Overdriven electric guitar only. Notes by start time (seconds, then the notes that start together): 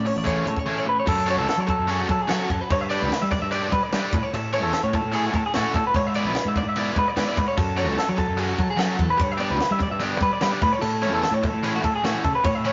0.06 muted overdriven electric guitar stroke
0.24 E3 A3 C#4 E4
0.47 muted overdriven electric guitar stroke
0.66 E3 A3 C#4 E4
0.86 muted overdriven electric guitar stroke
1.06 muted overdriven electric guitar stroke
1.26 C#4 F#4 A4 C#5
1.47 muted overdriven electric guitar stroke
1.67 muted overdriven electric guitar stroke
1.88 C#4 F#4 A4 C#5
2.09 muted overdriven electric guitar stroke
2.28 C#4 F#4 A4 C#5
2.48 muted overdriven electric guitar stroke
2.70 muted overdriven electric guitar stroke
2.90 D4 G4 B4 D5
3.11 muted overdriven electric guitar stroke
3.31 muted overdriven electric guitar stroke
3.51 D4 G4 B4 D5
3.72 muted overdriven electric guitar stroke
3.93 D4 G4 B4 D5
4.14 muted overdriven electric guitar stroke
4.34 muted overdriven electric guitar stroke
4.53 C#4 E4 A4 C#5
4.73 muted overdriven electric guitar stroke
4.94 muted overdriven electric guitar stroke
5.13 C#4 E4 A4 C#5
5.34 muted overdriven electric guitar stroke
5.56 C#4 E4 A4 C#5
5.77 muted overdriven electric guitar stroke
5.96 muted overdriven electric guitar stroke
6.16 B3 E4 B4 D5
6.35 muted overdriven electric guitar stroke
6.57 muted overdriven electric guitar stroke
6.76 B3 E4 B4 D5
6.97 muted overdriven electric guitar stroke
7.16 B3 E4 B4 D5
7.37 muted overdriven electric guitar stroke
7.57 muted overdriven electric guitar stroke
7.77 F#3 C#4 F#4 A4
7.97 muted overdriven electric guitar stroke
8.16 muted overdriven electric guitar stroke
8.37 F#3 C#4 F#4 A4
8.58 muted overdriven electric guitar stroke
8.77 F#3 C#4 F#4 A4
8.97 muted overdriven electric guitar stroke
9.17 muted overdriven electric guitar stroke
9.38 G3 B3 D4 G4
9.59 muted overdriven electric guitar stroke
9.79 muted overdriven electric guitar stroke
10.00 G3 B3 D4 G4
10.21 muted overdriven electric guitar stroke
10.41 G3 B3 D4 G4
10.62 muted overdriven electric guitar stroke
10.82 muted overdriven electric guitar stroke
11.02 E3 A3 C#4 E4
11.24 muted overdriven electric guitar stroke
11.43 muted overdriven electric guitar stroke
11.63 E3 A3 C#4 E4
11.84 muted overdriven electric guitar stroke
12.04 E3 A3 C#4 E4
12.24 muted overdriven electric guitar stroke
12.44 muted overdriven electric guitar stroke
12.65 E3 A3 C#4 E4